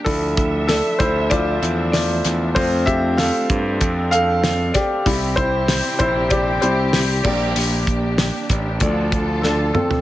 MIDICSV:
0, 0, Header, 1, 5, 480
1, 0, Start_track
1, 0, Key_signature, -1, "minor"
1, 0, Tempo, 625195
1, 45, Time_signature, 4, 2, 24, 8
1, 7687, End_track
2, 0, Start_track
2, 0, Title_t, "Grand piano"
2, 0, Program_c, 0, 0
2, 0, Control_c, 0, 64, 127
2, 34, Note_on_c, 0, 69, 94
2, 39, Note_on_c, 0, 53, 48
2, 43, Note_on_c, 0, 62, 65
2, 48, Note_on_c, 0, 64, 61
2, 56, Control_c, 0, 64, 0
2, 196, Control_c, 0, 64, 127
2, 361, Note_off_c, 0, 53, 0
2, 366, Note_off_c, 0, 64, 0
2, 497, Note_off_c, 0, 62, 0
2, 506, Note_off_c, 0, 69, 0
2, 517, Note_on_c, 0, 69, 86
2, 534, Note_on_c, 0, 62, 62
2, 753, Note_off_c, 0, 62, 0
2, 757, Note_on_c, 0, 72, 84
2, 769, Note_off_c, 0, 69, 0
2, 773, Note_on_c, 0, 64, 69
2, 812, Note_off_c, 0, 72, 0
2, 826, Note_off_c, 0, 64, 0
2, 997, Note_on_c, 0, 74, 102
2, 1002, Note_on_c, 0, 53, 55
2, 1006, Note_on_c, 0, 62, 45
2, 1009, Note_on_c, 0, 64, 54
2, 1013, Note_on_c, 0, 65, 79
2, 1219, Note_off_c, 0, 53, 0
2, 1221, Note_off_c, 0, 62, 0
2, 1223, Note_off_c, 0, 64, 0
2, 1458, Note_off_c, 0, 65, 0
2, 1464, Note_off_c, 0, 74, 0
2, 1475, Note_on_c, 0, 74, 80
2, 1489, Note_on_c, 0, 65, 69
2, 1929, Note_off_c, 0, 74, 0
2, 1936, Note_off_c, 0, 65, 0
2, 1956, Note_on_c, 0, 72, 91
2, 1957, Note_on_c, 0, 57, 55
2, 1963, Note_on_c, 0, 60, 49
2, 1967, Note_on_c, 0, 65, 78
2, 1973, Control_c, 0, 64, 0
2, 2094, Control_c, 0, 64, 127
2, 2183, Note_off_c, 0, 72, 0
2, 2190, Note_off_c, 0, 65, 0
2, 2195, Note_on_c, 0, 76, 99
2, 2207, Note_on_c, 0, 67, 72
2, 2429, Note_off_c, 0, 67, 0
2, 2436, Note_on_c, 0, 77, 87
2, 2447, Note_off_c, 0, 76, 0
2, 2448, Note_on_c, 0, 69, 77
2, 3129, Note_off_c, 0, 77, 0
2, 3136, Note_off_c, 0, 69, 0
2, 3157, Note_on_c, 0, 77, 105
2, 3170, Note_on_c, 0, 69, 81
2, 3617, Note_off_c, 0, 69, 0
2, 3637, Note_on_c, 0, 74, 81
2, 3651, Note_on_c, 0, 67, 77
2, 3655, Note_off_c, 0, 77, 0
2, 3850, Note_off_c, 0, 57, 0
2, 3853, Note_off_c, 0, 60, 0
2, 3880, Note_on_c, 0, 55, 53
2, 3883, Note_on_c, 0, 60, 53
2, 3889, Note_on_c, 0, 64, 54
2, 3893, Control_c, 0, 64, 0
2, 4017, Control_c, 0, 64, 127
2, 4097, Note_off_c, 0, 67, 0
2, 4115, Note_on_c, 0, 72, 94
2, 4116, Note_off_c, 0, 64, 0
2, 4127, Note_on_c, 0, 64, 66
2, 4135, Note_off_c, 0, 74, 0
2, 4575, Note_off_c, 0, 64, 0
2, 4586, Note_off_c, 0, 72, 0
2, 4597, Note_on_c, 0, 72, 91
2, 4611, Note_on_c, 0, 64, 71
2, 4831, Note_off_c, 0, 64, 0
2, 4837, Note_on_c, 0, 74, 94
2, 4848, Note_off_c, 0, 72, 0
2, 4851, Note_on_c, 0, 67, 82
2, 5070, Note_off_c, 0, 55, 0
2, 5071, Note_off_c, 0, 67, 0
2, 5074, Note_off_c, 0, 60, 0
2, 5078, Note_on_c, 0, 72, 85
2, 5081, Note_on_c, 0, 55, 50
2, 5085, Note_on_c, 0, 60, 42
2, 5088, Note_off_c, 0, 74, 0
2, 5088, Note_on_c, 0, 64, 65
2, 5299, Note_off_c, 0, 55, 0
2, 5301, Note_off_c, 0, 60, 0
2, 5537, Note_off_c, 0, 64, 0
2, 5555, Note_on_c, 0, 74, 81
2, 5560, Note_on_c, 0, 55, 58
2, 5564, Note_on_c, 0, 58, 54
2, 5570, Note_on_c, 0, 62, 59
2, 5572, Note_on_c, 0, 67, 61
2, 5574, Control_c, 0, 64, 0
2, 5575, Note_off_c, 0, 72, 0
2, 5706, Control_c, 0, 64, 127
2, 6248, Note_off_c, 0, 74, 0
2, 6257, Note_off_c, 0, 67, 0
2, 6731, Note_off_c, 0, 55, 0
2, 6733, Note_off_c, 0, 58, 0
2, 6736, Note_off_c, 0, 62, 0
2, 6759, Note_on_c, 0, 53, 57
2, 6762, Note_on_c, 0, 57, 57
2, 6767, Note_on_c, 0, 62, 64
2, 6773, Control_c, 0, 64, 0
2, 6900, Control_c, 0, 64, 127
2, 7233, Note_on_c, 0, 69, 75
2, 7238, Note_off_c, 0, 62, 0
2, 7249, Note_on_c, 0, 62, 63
2, 7463, Note_off_c, 0, 69, 0
2, 7469, Note_off_c, 0, 62, 0
2, 7475, Note_on_c, 0, 69, 71
2, 7490, Note_on_c, 0, 60, 53
2, 7687, Note_off_c, 0, 53, 0
2, 7687, Note_off_c, 0, 57, 0
2, 7687, Note_off_c, 0, 60, 0
2, 7687, Note_off_c, 0, 69, 0
2, 7687, End_track
3, 0, Start_track
3, 0, Title_t, "String section"
3, 0, Program_c, 1, 48
3, 42, Note_on_c, 1, 50, 69
3, 44, Note_on_c, 1, 57, 62
3, 45, Note_on_c, 1, 62, 72
3, 46, Note_on_c, 1, 76, 73
3, 1944, Note_off_c, 1, 50, 0
3, 1946, Note_off_c, 1, 76, 0
3, 1965, Note_on_c, 1, 60, 73
3, 3853, Note_off_c, 1, 57, 0
3, 3854, Note_off_c, 1, 62, 0
3, 3865, Note_off_c, 1, 60, 0
3, 3886, Note_on_c, 1, 60, 76
3, 3888, Note_on_c, 1, 64, 66
3, 3889, Note_on_c, 1, 48, 79
3, 3890, Note_on_c, 1, 67, 80
3, 5548, Note_off_c, 1, 60, 0
3, 5549, Note_off_c, 1, 48, 0
3, 5549, Note_off_c, 1, 64, 0
3, 5562, Note_on_c, 1, 62, 69
3, 5564, Note_on_c, 1, 58, 76
3, 6737, Note_off_c, 1, 67, 0
3, 6751, Note_off_c, 1, 58, 0
3, 6767, Note_on_c, 1, 69, 75
3, 6768, Note_on_c, 1, 50, 69
3, 6770, Note_on_c, 1, 65, 64
3, 7687, Note_off_c, 1, 50, 0
3, 7687, Note_off_c, 1, 62, 0
3, 7687, Note_off_c, 1, 65, 0
3, 7687, Note_off_c, 1, 69, 0
3, 7687, End_track
4, 0, Start_track
4, 0, Title_t, "Picked electric bass"
4, 0, Program_c, 2, 34
4, 47, Note_on_c, 2, 38, 94
4, 616, Note_off_c, 2, 38, 0
4, 767, Note_on_c, 2, 38, 80
4, 1215, Note_off_c, 2, 38, 0
4, 1247, Note_on_c, 2, 40, 94
4, 1695, Note_off_c, 2, 40, 0
4, 1728, Note_on_c, 2, 40, 88
4, 1950, Note_off_c, 2, 40, 0
4, 1965, Note_on_c, 2, 41, 102
4, 2535, Note_off_c, 2, 41, 0
4, 2685, Note_on_c, 2, 43, 89
4, 2908, Note_off_c, 2, 43, 0
4, 2927, Note_on_c, 2, 41, 117
4, 3615, Note_off_c, 2, 41, 0
4, 3886, Note_on_c, 2, 36, 102
4, 4455, Note_off_c, 2, 36, 0
4, 4605, Note_on_c, 2, 34, 97
4, 5054, Note_off_c, 2, 34, 0
4, 5085, Note_on_c, 2, 36, 89
4, 5534, Note_off_c, 2, 36, 0
4, 5563, Note_on_c, 2, 34, 91
4, 5786, Note_off_c, 2, 34, 0
4, 5802, Note_on_c, 2, 34, 93
4, 6372, Note_off_c, 2, 34, 0
4, 6524, Note_on_c, 2, 33, 75
4, 6747, Note_off_c, 2, 33, 0
4, 6764, Note_on_c, 2, 38, 110
4, 7453, Note_off_c, 2, 38, 0
4, 7687, End_track
5, 0, Start_track
5, 0, Title_t, "Drums"
5, 47, Note_on_c, 9, 36, 104
5, 47, Note_on_c, 9, 44, 64
5, 48, Note_on_c, 9, 46, 92
5, 124, Note_off_c, 9, 36, 0
5, 124, Note_off_c, 9, 44, 0
5, 125, Note_off_c, 9, 46, 0
5, 287, Note_on_c, 9, 36, 96
5, 287, Note_on_c, 9, 46, 67
5, 288, Note_on_c, 9, 44, 65
5, 364, Note_off_c, 9, 36, 0
5, 364, Note_off_c, 9, 46, 0
5, 365, Note_off_c, 9, 44, 0
5, 526, Note_on_c, 9, 44, 66
5, 527, Note_on_c, 9, 38, 110
5, 531, Note_on_c, 9, 46, 91
5, 603, Note_off_c, 9, 38, 0
5, 603, Note_off_c, 9, 44, 0
5, 607, Note_off_c, 9, 46, 0
5, 766, Note_on_c, 9, 46, 66
5, 767, Note_on_c, 9, 36, 99
5, 767, Note_on_c, 9, 44, 60
5, 843, Note_off_c, 9, 46, 0
5, 844, Note_off_c, 9, 36, 0
5, 844, Note_off_c, 9, 44, 0
5, 1004, Note_on_c, 9, 46, 98
5, 1008, Note_on_c, 9, 36, 77
5, 1009, Note_on_c, 9, 44, 61
5, 1081, Note_off_c, 9, 46, 0
5, 1085, Note_off_c, 9, 36, 0
5, 1085, Note_off_c, 9, 44, 0
5, 1249, Note_on_c, 9, 44, 61
5, 1249, Note_on_c, 9, 46, 64
5, 1325, Note_off_c, 9, 46, 0
5, 1326, Note_off_c, 9, 44, 0
5, 1485, Note_on_c, 9, 38, 107
5, 1486, Note_on_c, 9, 44, 64
5, 1489, Note_on_c, 9, 46, 86
5, 1562, Note_off_c, 9, 38, 0
5, 1563, Note_off_c, 9, 44, 0
5, 1566, Note_off_c, 9, 46, 0
5, 1724, Note_on_c, 9, 46, 73
5, 1727, Note_on_c, 9, 44, 58
5, 1728, Note_on_c, 9, 38, 29
5, 1801, Note_off_c, 9, 46, 0
5, 1804, Note_off_c, 9, 44, 0
5, 1805, Note_off_c, 9, 38, 0
5, 1965, Note_on_c, 9, 36, 101
5, 1965, Note_on_c, 9, 44, 60
5, 1965, Note_on_c, 9, 46, 99
5, 2041, Note_off_c, 9, 44, 0
5, 2042, Note_off_c, 9, 36, 0
5, 2042, Note_off_c, 9, 46, 0
5, 2204, Note_on_c, 9, 46, 54
5, 2205, Note_on_c, 9, 44, 63
5, 2206, Note_on_c, 9, 36, 85
5, 2281, Note_off_c, 9, 46, 0
5, 2282, Note_off_c, 9, 36, 0
5, 2282, Note_off_c, 9, 44, 0
5, 2443, Note_on_c, 9, 44, 67
5, 2444, Note_on_c, 9, 38, 117
5, 2448, Note_on_c, 9, 46, 98
5, 2520, Note_off_c, 9, 44, 0
5, 2521, Note_off_c, 9, 38, 0
5, 2525, Note_off_c, 9, 46, 0
5, 2684, Note_on_c, 9, 46, 63
5, 2685, Note_on_c, 9, 44, 62
5, 2686, Note_on_c, 9, 36, 101
5, 2761, Note_off_c, 9, 46, 0
5, 2762, Note_off_c, 9, 36, 0
5, 2762, Note_off_c, 9, 44, 0
5, 2922, Note_on_c, 9, 46, 85
5, 2926, Note_on_c, 9, 36, 86
5, 2927, Note_on_c, 9, 44, 62
5, 2999, Note_off_c, 9, 46, 0
5, 3003, Note_off_c, 9, 36, 0
5, 3003, Note_off_c, 9, 44, 0
5, 3166, Note_on_c, 9, 46, 69
5, 3167, Note_on_c, 9, 44, 72
5, 3243, Note_off_c, 9, 44, 0
5, 3243, Note_off_c, 9, 46, 0
5, 3406, Note_on_c, 9, 38, 113
5, 3406, Note_on_c, 9, 44, 56
5, 3410, Note_on_c, 9, 46, 84
5, 3482, Note_off_c, 9, 38, 0
5, 3483, Note_off_c, 9, 44, 0
5, 3487, Note_off_c, 9, 46, 0
5, 3643, Note_on_c, 9, 46, 80
5, 3646, Note_on_c, 9, 44, 56
5, 3647, Note_on_c, 9, 36, 75
5, 3647, Note_on_c, 9, 38, 31
5, 3719, Note_off_c, 9, 46, 0
5, 3723, Note_off_c, 9, 44, 0
5, 3724, Note_off_c, 9, 36, 0
5, 3724, Note_off_c, 9, 38, 0
5, 3885, Note_on_c, 9, 36, 95
5, 3885, Note_on_c, 9, 44, 59
5, 3886, Note_on_c, 9, 46, 93
5, 3962, Note_off_c, 9, 36, 0
5, 3962, Note_off_c, 9, 44, 0
5, 3963, Note_off_c, 9, 46, 0
5, 4124, Note_on_c, 9, 46, 58
5, 4125, Note_on_c, 9, 36, 97
5, 4125, Note_on_c, 9, 44, 58
5, 4201, Note_off_c, 9, 46, 0
5, 4202, Note_off_c, 9, 36, 0
5, 4202, Note_off_c, 9, 44, 0
5, 4363, Note_on_c, 9, 44, 68
5, 4364, Note_on_c, 9, 38, 127
5, 4368, Note_on_c, 9, 46, 93
5, 4440, Note_off_c, 9, 44, 0
5, 4441, Note_off_c, 9, 38, 0
5, 4444, Note_off_c, 9, 46, 0
5, 4601, Note_on_c, 9, 46, 68
5, 4602, Note_on_c, 9, 44, 56
5, 4605, Note_on_c, 9, 36, 102
5, 4678, Note_off_c, 9, 46, 0
5, 4679, Note_off_c, 9, 44, 0
5, 4682, Note_off_c, 9, 36, 0
5, 4840, Note_on_c, 9, 46, 86
5, 4844, Note_on_c, 9, 44, 56
5, 4845, Note_on_c, 9, 36, 83
5, 4917, Note_off_c, 9, 46, 0
5, 4921, Note_off_c, 9, 44, 0
5, 4922, Note_off_c, 9, 36, 0
5, 5083, Note_on_c, 9, 46, 68
5, 5084, Note_on_c, 9, 44, 63
5, 5160, Note_off_c, 9, 46, 0
5, 5161, Note_off_c, 9, 44, 0
5, 5322, Note_on_c, 9, 38, 110
5, 5322, Note_on_c, 9, 44, 64
5, 5326, Note_on_c, 9, 46, 82
5, 5399, Note_off_c, 9, 38, 0
5, 5399, Note_off_c, 9, 44, 0
5, 5403, Note_off_c, 9, 46, 0
5, 5562, Note_on_c, 9, 49, 68
5, 5564, Note_on_c, 9, 36, 88
5, 5639, Note_off_c, 9, 49, 0
5, 5640, Note_off_c, 9, 36, 0
5, 5803, Note_on_c, 9, 44, 66
5, 5804, Note_on_c, 9, 46, 89
5, 5880, Note_off_c, 9, 44, 0
5, 5881, Note_off_c, 9, 46, 0
5, 6043, Note_on_c, 9, 46, 63
5, 6044, Note_on_c, 9, 36, 83
5, 6044, Note_on_c, 9, 44, 62
5, 6120, Note_off_c, 9, 46, 0
5, 6121, Note_off_c, 9, 36, 0
5, 6121, Note_off_c, 9, 44, 0
5, 6281, Note_on_c, 9, 44, 62
5, 6282, Note_on_c, 9, 38, 113
5, 6286, Note_on_c, 9, 46, 85
5, 6358, Note_off_c, 9, 38, 0
5, 6358, Note_off_c, 9, 44, 0
5, 6362, Note_off_c, 9, 46, 0
5, 6522, Note_on_c, 9, 46, 57
5, 6523, Note_on_c, 9, 44, 60
5, 6524, Note_on_c, 9, 36, 84
5, 6599, Note_off_c, 9, 46, 0
5, 6600, Note_off_c, 9, 44, 0
5, 6601, Note_off_c, 9, 36, 0
5, 6758, Note_on_c, 9, 46, 100
5, 6762, Note_on_c, 9, 44, 66
5, 6765, Note_on_c, 9, 36, 82
5, 6835, Note_off_c, 9, 46, 0
5, 6839, Note_off_c, 9, 44, 0
5, 6841, Note_off_c, 9, 36, 0
5, 7003, Note_on_c, 9, 46, 76
5, 7004, Note_on_c, 9, 36, 91
5, 7004, Note_on_c, 9, 44, 65
5, 7080, Note_off_c, 9, 36, 0
5, 7080, Note_off_c, 9, 46, 0
5, 7081, Note_off_c, 9, 44, 0
5, 7243, Note_on_c, 9, 38, 60
5, 7320, Note_off_c, 9, 38, 0
5, 7483, Note_on_c, 9, 45, 84
5, 7560, Note_off_c, 9, 45, 0
5, 7605, Note_on_c, 9, 43, 85
5, 7682, Note_off_c, 9, 43, 0
5, 7687, End_track
0, 0, End_of_file